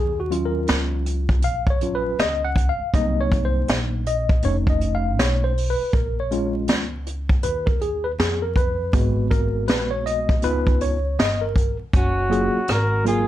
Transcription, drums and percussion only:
0.32 closed hi-hat medium
0.67 snare loud
0.67 closed hi-hat medium
1.06 closed hi-hat medium
1.29 kick medium
1.42 closed hi-hat medium
1.67 kick medium
1.81 closed hi-hat medium
2.19 snare loud
2.19 closed hi-hat medium
2.56 kick medium
2.56 closed hi-hat medium
2.94 kick loud
2.94 closed hi-hat loud
3.32 kick medium
3.32 closed hi-hat medium
3.68 snare loud
3.68 closed hi-hat medium
4.06 closed hi-hat medium
4.29 kick loud
4.42 closed hi-hat medium
4.67 kick medium
4.81 closed hi-hat medium
5.19 snare loud
5.19 closed hi-hat medium
5.57 open hi-hat medium
5.93 kick loud
5.93 closed hi-hat medium
6.31 closed hi-hat medium
6.68 snare loud
6.68 closed hi-hat medium
7.06 closed hi-hat medium
7.29 kick loud
7.43 closed hi-hat medium
7.67 kick medium
7.81 closed hi-hat medium
8.20 snare loud
8.20 closed hi-hat medium
8.56 kick medium
8.56 closed hi-hat medium
8.93 kick loud
8.93 closed hi-hat loud
9.31 kick medium
9.31 closed hi-hat medium
9.68 snare loud
9.68 closed hi-hat medium
10.06 closed hi-hat medium
10.29 kick loud
10.42 closed hi-hat medium
10.67 kick medium
10.81 closed hi-hat medium
11.20 snare loud
11.20 closed hi-hat medium
11.56 kick medium
11.56 closed hi-hat medium
11.93 kick loud
11.93 closed hi-hat medium
12.32 closed hi-hat medium
12.68 cross-stick loud
12.68 closed hi-hat medium
13.06 closed hi-hat medium

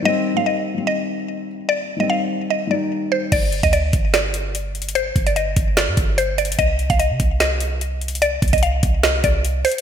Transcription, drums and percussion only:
3.32 kick loud
3.32 closed hi-hat medium
3.32 crash loud
3.52 closed hi-hat medium
3.63 kick medium
3.63 closed hi-hat medium
3.73 closed hi-hat medium
3.93 kick medium
3.93 closed hi-hat medium
4.14 snare loud
4.14 closed hi-hat medium
4.34 closed hi-hat medium
4.55 closed hi-hat medium
4.75 closed hi-hat medium
4.82 closed hi-hat medium
4.89 closed hi-hat medium
4.95 closed hi-hat medium
5.16 kick medium
5.16 closed hi-hat medium
5.27 closed hi-hat medium
5.36 closed hi-hat medium
5.56 kick loud
5.56 closed hi-hat medium
5.77 snare loud
5.77 closed hi-hat medium
5.97 kick loud
5.97 closed hi-hat medium
6.18 closed hi-hat medium
6.38 closed hi-hat medium
6.45 closed hi-hat medium
6.52 closed hi-hat medium
6.59 kick loud
6.59 closed hi-hat medium
6.79 closed hi-hat medium
6.90 kick medium
6.90 closed hi-hat medium
7.00 closed hi-hat medium
7.20 kick loud
7.20 closed hi-hat medium
7.40 snare loud
7.40 closed hi-hat medium
7.60 closed hi-hat medium
7.81 closed hi-hat medium
8.01 closed hi-hat medium
8.08 closed hi-hat medium
8.15 closed hi-hat medium
8.22 closed hi-hat medium
8.42 kick medium
8.42 closed hi-hat medium
8.48 closed hi-hat medium
8.53 kick medium
8.53 closed hi-hat medium
8.58 closed hi-hat medium
8.63 closed hi-hat medium
8.83 kick loud
8.83 closed hi-hat medium
9.03 snare loud
9.03 closed hi-hat medium
9.24 kick loud
9.24 closed hi-hat medium
9.45 closed hi-hat medium
9.65 closed hi-hat medium
9.65 open hi-hat medium
9.72 closed hi-hat medium

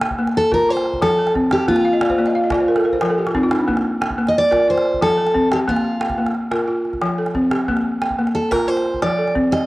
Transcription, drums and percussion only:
0.01 calabash click medium
0.11 calabash thump medium
0.19 calabash click soft
0.27 calabash click soft
0.52 calabash thump medium
0.77 calabash click medium
0.86 calabash click soft
0.93 calabash thump medium
1.02 calabash click medium
1.27 calabash click medium
1.35 calabash thump medium
1.51 calabash click medium
1.59 calabash click soft
1.68 calabash thump medium
1.76 calabash click medium
2.01 calabash click medium
2.10 calabash thump medium
2.18 calabash click soft
2.26 calabash click soft
2.50 calabash thump medium
2.50 calabash click medium
2.76 calabash click medium
2.84 calabash click soft
2.93 calabash thump soft
3.01 calabash click medium
3.27 calabash click medium
3.35 calabash thump medium
3.51 calabash click medium
3.60 calabash click soft
3.68 calabash thump medium
3.77 calabash click medium
4.02 calabash click medium
4.10 calabash thump medium
4.19 calabash click soft
4.27 calabash click soft
4.52 calabash thump medium
4.52 calabash click medium
4.78 calabash click soft
4.86 calabash click soft
4.94 calabash thump medium
5.02 calabash click medium
5.27 calabash click soft
5.35 calabash thump medium
5.52 calabash click medium
5.60 calabash click soft
5.68 calabash thump medium
5.76 calabash click soft
5.85 calabash click soft
6.01 calabash click medium
6.10 calabash thump medium
6.10 calabash click soft
6.26 calabash click soft
6.35 calabash click soft
6.51 calabash click medium
6.85 calabash click soft
6.93 calabash thump soft
6.93 calabash click soft
7.01 calabash click medium
7.26 calabash click soft
7.35 calabash thump medium
7.51 calabash click medium
7.68 calabash thump medium
7.77 calabash click soft
8.02 calabash click medium
8.10 calabash thump medium
8.19 calabash click soft
8.27 calabash click soft
8.52 calabash thump medium
8.52 calabash click medium
8.77 calabash click soft
8.86 calabash click soft
8.94 calabash thump soft
9.02 calabash click medium
9.28 calabash click soft
9.36 calabash thump medium
9.53 calabash click medium
9.61 calabash click soft

